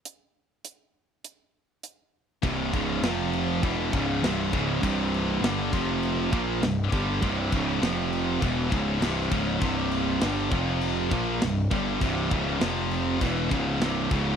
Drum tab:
CC |--------|xxxxxxxx|xxxxxxxx|xxxxxxxx|
HH |x-x-x-x-|--------|--------|--------|
SD |--------|--o---o-|--o---o-|--o---o-|
BD |--------|oo--oo-o|o--o-o-o|oo--oo-o|

CC |xxxxxxxx|xxxxxxxx|
HH |--------|--------|
SD |--o---o-|--o---o-|
BD |o--o-o-o|oo--oo-o|